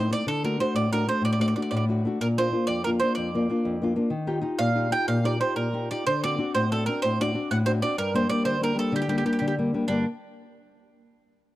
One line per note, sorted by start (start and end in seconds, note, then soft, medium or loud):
0.00 0.11 A2 medium
0.00 0.12 C5 medium
0.11 0.23 A3 soft
0.11 0.23 C4 soft
0.11 0.23 D#4 soft
0.11 0.26 D5 medium
0.27 0.58 D3 medium
0.27 0.44 A4 medium
0.44 0.58 A3 medium
0.44 0.59 D4 soft
0.44 0.59 F#4 medium
0.44 0.58 A#4 medium
0.60 0.85 A3 soft
0.60 0.86 D4 soft
0.60 0.86 F#4 medium
0.60 0.75 C5 medium
0.75 1.06 A2 medium
0.75 0.92 D5 medium
0.92 1.06 A3 soft
0.92 1.07 D4 soft
0.92 1.07 F#4 soft
0.92 1.07 A#4 medium
1.07 1.34 A3 soft
1.07 1.34 D4 soft
1.07 1.34 F#4 soft
1.07 1.23 C5 medium
1.22 1.54 A2 medium
1.22 1.31 D5 medium
1.32 1.39 D5 medium
1.40 1.55 A3 medium
1.40 1.56 D4 soft
1.40 1.56 F#4 medium
1.40 1.47 D5 medium
1.48 1.54 D5 soft
1.56 1.83 A3 soft
1.56 1.83 D4 soft
1.56 1.83 F#4 soft
1.56 1.61 D5 soft
1.62 1.69 D5 soft
1.71 2.04 A2 medium
1.71 1.75 D5 soft
1.77 1.84 D5 soft
1.89 2.04 A3 soft
1.89 2.04 D4 soft
1.89 2.06 F#4 soft
2.05 2.18 A3 soft
2.05 2.18 D4 soft
2.05 2.19 F#4 soft
2.21 2.53 A#2 medium
2.21 2.26 A#4 medium
2.38 2.51 A#3 soft
2.38 2.51 D4 soft
2.38 2.52 F4 medium
2.38 2.67 C5 medium
2.52 2.79 A#3 soft
2.52 2.79 D4 soft
2.52 2.79 F4 soft
2.67 3.00 F2 soft
2.67 2.84 D5 medium
2.84 3.01 A#3 soft
2.84 3.02 D4 soft
2.84 3.02 F4 soft
2.84 2.89 A#4 medium
3.00 3.28 A#3 soft
3.00 3.28 D4 soft
3.00 3.28 F4 medium
3.00 3.14 C5 medium
3.15 3.48 F2 medium
3.15 3.91 D5 medium
3.35 3.48 A#3 medium
3.35 3.49 D4 soft
3.35 3.49 F4 medium
3.49 3.75 A#3 soft
3.49 3.75 D4 soft
3.49 3.76 F4 soft
3.65 3.96 F2 medium
3.82 3.95 A#3 soft
3.82 3.95 D4 soft
3.82 3.95 F4 soft
3.96 4.08 A#3 soft
3.96 4.09 D4 soft
3.96 4.08 F4 soft
4.10 4.42 D#3 medium
4.27 4.40 D#4 medium
4.27 4.41 F4 soft
4.27 4.41 G4 medium
4.41 4.68 D#4 soft
4.41 4.69 F4 soft
4.41 4.69 G4 medium
4.59 4.91 A#2 medium
4.59 4.92 F5 medium
4.75 4.89 D#4 soft
4.75 4.90 F4 soft
4.75 4.91 G4 soft
4.90 5.17 D#4 soft
4.90 5.18 F4 soft
4.90 5.18 G4 soft
4.90 5.07 G5 medium
5.08 5.40 A#2 medium
5.08 5.24 F5 medium
5.24 5.39 D#4 soft
5.24 5.40 F4 soft
5.24 5.39 G4 medium
5.24 5.40 D5 medium
5.40 5.67 D#4 soft
5.40 5.67 F4 soft
5.40 5.67 G4 soft
5.40 5.56 C5 medium
5.56 5.88 A#2 medium
5.56 5.90 A#4 medium
5.73 5.90 D#4 soft
5.73 5.90 F4 soft
5.73 5.91 G4 soft
5.91 6.03 D#4 soft
5.91 6.03 F4 soft
5.91 6.03 G4 soft
5.91 6.05 D5 medium
6.07 6.38 D3 medium
6.07 6.22 C5 medium
6.24 6.37 C4 medium
6.24 6.37 D4 soft
6.24 6.38 F#4 medium
6.24 6.52 D5 medium
6.38 6.65 C4 soft
6.38 6.65 D4 soft
6.38 6.65 F#4 soft
6.55 6.86 A2 medium
6.55 6.70 C5 medium
6.72 6.86 C4 soft
6.72 6.87 D4 soft
6.72 6.87 F#4 soft
6.72 6.86 A4 medium
6.86 7.13 C4 soft
6.86 7.14 D4 soft
6.86 7.13 F#4 soft
6.86 7.01 A#4 medium
7.02 7.34 A2 medium
7.02 7.18 C5 medium
7.20 7.33 C4 medium
7.20 7.33 D4 soft
7.20 7.34 F#4 medium
7.20 7.48 D5 medium
7.34 7.59 C4 soft
7.34 7.60 D4 soft
7.34 7.60 F#4 soft
7.51 7.81 A2 medium
7.51 7.56 F#5 medium
7.66 7.82 C4 soft
7.66 7.82 D4 soft
7.66 7.83 F#4 soft
7.66 7.71 C5 medium
7.82 7.94 C4 soft
7.82 7.95 D4 soft
7.82 7.95 F#4 soft
7.82 7.96 D5 medium
7.98 8.29 G2 medium
7.98 8.15 A#4 medium
8.14 8.28 G3 medium
8.14 8.28 A#3 medium
8.14 8.29 D4 medium
8.14 8.29 C5 medium
8.29 8.55 G3 soft
8.29 8.55 A#3 soft
8.29 8.56 D4 soft
8.29 8.45 D5 medium
8.45 8.76 D3 medium
8.45 8.60 C5 medium
8.60 8.74 G3 soft
8.60 8.74 A#3 soft
8.60 8.74 D4 soft
8.60 8.78 A#4 medium
8.75 9.01 G3 soft
8.75 9.01 A#3 soft
8.75 9.02 D4 soft
8.79 8.92 A4 medium
8.92 9.24 D3 medium
8.92 9.01 G4 medium
9.02 9.08 G4 soft
9.08 9.23 G3 soft
9.08 9.24 A#3 soft
9.08 9.24 D4 medium
9.08 9.15 G4 soft
9.18 9.23 G4 soft
9.24 9.51 G3 soft
9.24 9.51 A#3 soft
9.24 9.51 D4 soft
9.24 9.31 G4 soft
9.33 9.38 G4 soft
9.39 9.73 D3 medium
9.39 9.45 G4 soft
9.48 9.54 G4 soft
9.59 9.73 G3 soft
9.59 9.73 A#3 soft
9.59 9.73 D4 soft
9.74 9.86 G3 soft
9.74 9.86 A#3 soft
9.74 9.87 D4 soft
9.88 10.04 G2 soft
9.88 10.04 D3 soft
9.88 10.05 G3 soft
9.88 10.06 A#3 soft
9.88 10.04 D4 medium